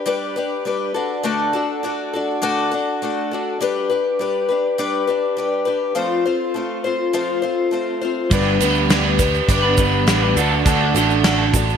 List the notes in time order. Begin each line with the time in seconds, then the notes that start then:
Already playing: D4 G4 B4 D5
0.06 G3 D4 G4 B4
0.36 D4 G4 B4
0.65 G3 D4 G4 B4
0.94 D4 F#4 A4 D5
1.23 D3 A3 D4 F#4 A4
1.53 D4 F#4 A4
1.83 A3 D4 F#4 A4
2.14 D4 F#4 A4
2.42 D3 A3 D4 F#4 A4
2.71 D4 F#4 A4
3.02 A3 D4 F#4 A4
3.31 D4 F#4 A4
3.59 G3 D4 G4 B4 D5
3.90 D4 G4 B4
4.19 G3 D4 G4 B4
4.49 D4 G4 B4
4.78 G3 D4 G4 B4
5.07 D4 G4 B4
5.37 G3 D4 G4 B4
5.65 D4 G4 B4
5.95 F3 A3 C4 F4 A4 C5
6.26 C4 F4 C5
6.54 A3 C4 F4 C5
6.84 C4 F4 C5
7.13 F3 A3 C4 F4 C5
7.42 C4 F4 C5
7.71 A3 C4 F4 C5
8.01 C4 F4 C5
8.30 G1 G3 B3 D4 G4 B4 D5, kick, crash, shaker
8.60 D2 G3 B3 G4 B4, crash, shaker
8.64 D4
8.75 shaker
8.90 G3 B3 D4 G4 B4, snare, crash, shaker
9.03 B3 D4 B4
9.19 D4 G4 B4, muted clean electric guitar stroke, kick, snare, crash, shaker
9.34 shaker
9.48 G1 G3 D4 G4 B4, kick, crash, shaker
9.62 B3 D4 B4
9.77 G3 B3 D4 G4 B4, kick, crash, shaker
10.07 A1 G3 B3 D4 G4 B4, snare, crash, shaker
10.21 B3 D4 B4
10.34 D2 D3 D4 F#4 A4 D5, crash, shaker
10.40 D4
10.50 D4 F#4 A4
10.65 D2 D3 A3 D4 F#4 A4, kick, crash, shaker
10.94 A1 D3 D4 F#4 A4, crash, shaker
11.10 shaker
11.23 D3 A3 D4 F#4 A4, snare, crash, shaker
11.38 D4 F#4 A4
11.53 D4 F#4 A4, muted clean electric guitar stroke, kick, crash, shaker
11.70 shaker